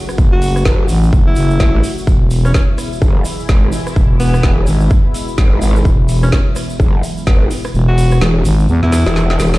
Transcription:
0.00 2.03 C#3 medium
0.00 2.03 F#3 medium
0.00 2.03 A3 medium
0.00 2.03 F#4 medium
0.09 cross-stick medium
0.09 shaker medium
0.18 0.64 F#1 medium
0.18 kick loud
0.18 shaker soft
0.32 0.66 F#4 loud
0.42 open hi-hat loud
0.42 shaker medium
0.56 cross-stick medium
0.56 shaker medium
0.65 0.88 F#1 loud
0.65 kick loud
0.65 snare loud
0.65 shaker soft
0.88 1.11 A1 loud
0.88 open hi-hat loud
0.88 shaker medium
1.03 shaker soft
1.13 1.35 F#1 loud
1.13 kick loud
1.13 shaker soft
1.27 1.92 E4 loud
1.36 1.58 F#1 loud
1.36 open hi-hat loud
1.36 shaker medium
1.50 shaker soft
1.60 1.82 A1 loud
1.60 kick loud
1.60 snare loud
1.60 shaker soft
1.84 open hi-hat loud
1.84 shaker medium
1.98 shaker medium
2.07 2.53 E1 loud
2.07 9.58 B2 medium
2.07 9.58 E3 medium
2.07 9.58 G#3 medium
2.07 9.58 E4 medium
2.07 kick loud
2.07 shaker soft
2.30 open hi-hat loud
2.30 shaker medium
2.45 2.51 C#4 medium
2.45 cross-stick medium
2.45 shaker medium
2.54 2.64 C#4 medium
2.54 kick loud
2.54 snare loud
2.54 shaker soft
2.78 cross-stick medium
2.78 open hi-hat medium
2.78 shaker loud
2.93 shaker medium
3.02 3.24 F#1 loud
3.02 kick loud
3.02 shaker soft
3.25 open hi-hat loud
3.25 shaker medium
3.40 shaker soft
3.48 3.71 G#1 loud
3.48 kick loud
3.48 snare loud
3.48 shaker soft
3.72 open hi-hat loud
3.72 shaker medium
3.87 cross-stick medium
3.87 shaker medium
3.96 4.42 E1 medium
3.96 kick loud
3.96 shaker soft
4.20 4.58 B3 medium
4.20 open hi-hat loud
4.20 shaker medium
4.34 cross-stick medium
4.34 shaker soft
4.43 4.66 E1 loud
4.43 kick loud
4.43 snare loud
4.43 shaker soft
4.67 4.89 G#1 loud
4.67 open hi-hat medium
4.67 shaker medium
4.80 shaker soft
4.90 kick loud
4.90 shaker soft
5.14 open hi-hat loud
5.14 shaker loud
5.28 shaker medium
5.38 5.60 G#1 loud
5.38 kick loud
5.38 snare loud
5.38 shaker soft
5.62 5.84 G#1 loud
5.62 open hi-hat loud
5.62 shaker loud
5.76 shaker soft
5.85 6.31 E1 loud
5.85 kick loud
5.85 shaker soft
6.08 open hi-hat loud
6.08 shaker medium
6.23 6.29 C#4 medium
6.23 cross-stick medium
6.23 shaker medium
6.32 6.42 C#4 medium
6.32 kick loud
6.32 snare loud
6.32 shaker soft
6.56 cross-stick medium
6.56 open hi-hat medium
6.56 shaker medium
6.70 shaker medium
6.80 7.02 F#1 loud
6.80 kick loud
6.80 shaker soft
7.03 open hi-hat loud
7.03 shaker medium
7.17 shaker soft
7.27 7.49 G#1 loud
7.27 kick loud
7.27 snare loud
7.27 shaker soft
7.51 open hi-hat medium
7.51 shaker medium
7.64 cross-stick medium
7.64 shaker soft
7.74 8.20 E1 loud
7.74 shaker soft
7.88 8.21 F#4 loud
7.98 open hi-hat loud
7.98 shaker loud
8.11 cross-stick medium
8.11 shaker medium
8.21 8.44 E1 loud
8.21 snare loud
8.21 shaker soft
8.45 8.67 G#1 loud
8.45 open hi-hat medium
8.45 shaker medium
8.59 shaker soft
8.69 8.81 E2 loud
8.69 shaker soft
8.83 9.04 E2 medium
8.83 9.48 E4 loud
8.83 snare soft
8.92 snare medium
8.92 open hi-hat loud
8.92 shaker loud
9.06 9.38 E1 loud
9.06 snare medium
9.06 shaker soft
9.16 snare medium
9.16 shaker soft
9.30 snare medium
9.39 9.58 E1 medium
9.39 snare loud
9.39 open hi-hat medium
9.39 shaker medium
9.54 snare medium
9.54 shaker medium

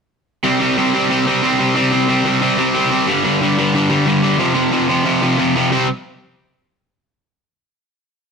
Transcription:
0.44 0.61 C3 medium
0.44 0.61 G3 loud
0.44 0.60 C4 loud
0.60 0.77 C3 medium
0.60 0.78 G3 medium
0.60 0.78 C4 medium
0.77 0.95 C3 medium
0.77 0.94 G3 medium
0.77 0.94 C4 loud
0.94 1.08 C3 medium
0.94 1.10 G3 medium
0.94 1.10 C4 medium
1.10 1.27 C3 medium
1.10 1.27 G3 medium
1.10 1.26 C4 medium
1.27 1.42 C3 medium
1.27 1.43 G3 medium
1.27 1.43 C4 medium
1.43 1.59 C3 medium
1.43 1.59 G3 medium
1.43 1.58 C4 loud
1.59 1.74 C3 medium
1.59 1.76 G3 medium
1.59 1.75 C4 medium
1.75 1.92 C3 medium
1.75 1.92 G3 loud
1.75 1.91 C4 loud
1.92 2.07 C3 medium
1.92 2.09 G3 medium
1.92 2.09 C4 medium
2.09 2.26 C3 medium
2.09 2.26 G3 medium
2.09 2.24 C4 loud
2.25 2.40 C3 medium
2.25 2.41 G3 medium
2.25 2.42 C4 medium
2.42 2.58 C3 medium
2.42 2.57 G3 loud
2.42 2.57 C4 medium
2.58 2.73 C3 medium
2.58 2.74 G3 medium
2.58 2.74 C4 medium
2.74 2.91 C3 medium
2.74 2.90 G3 medium
2.74 2.90 C4 loud
2.91 3.07 C3 medium
2.91 3.07 G3 medium
2.91 3.07 C4 medium
3.07 3.25 G2 medium
3.07 3.24 D3 loud
3.07 3.23 G3 loud
3.24 3.40 G2 medium
3.24 3.41 D3 medium
3.24 3.41 G3 medium
3.41 3.58 G2 medium
3.41 3.57 D3 medium
3.41 3.57 G3 loud
3.58 3.73 G2 medium
3.58 3.73 D3 medium
3.58 3.75 G3 medium
3.74 3.90 G2 medium
3.74 3.89 D3 loud
3.74 3.88 G3 loud
3.89 4.05 G2 medium
3.89 4.06 D3 medium
3.89 4.07 G3 medium
4.07 4.24 G2 loud
4.07 4.23 D3 medium
4.07 4.22 G3 medium
4.23 4.38 G2 medium
4.23 4.39 D3 medium
4.23 4.39 G3 medium
4.38 4.55 F2 loud
4.38 4.54 C3 loud
4.38 4.53 F3 loud
4.54 4.71 F2 medium
4.54 4.71 C3 medium
4.54 4.72 F3 medium
4.72 4.89 F2 loud
4.72 4.89 C3 medium
4.72 4.88 F3 medium
4.89 5.04 F2 medium
4.89 5.04 C3 medium
4.89 5.05 F3 medium
5.05 5.22 F2 medium
5.05 5.21 C3 loud
5.05 5.21 F3 medium
5.22 5.37 F2 medium
5.22 5.37 C3 medium
5.22 5.38 F3 loud
5.38 5.55 F2 medium
5.38 5.55 C3 medium
5.38 5.54 F3 loud
5.56 5.72 F2 medium
5.56 5.71 C3 medium
5.56 5.72 F3 medium
5.72 5.86 C3 loud
5.72 5.86 G3 medium
5.72 5.86 C4 loud

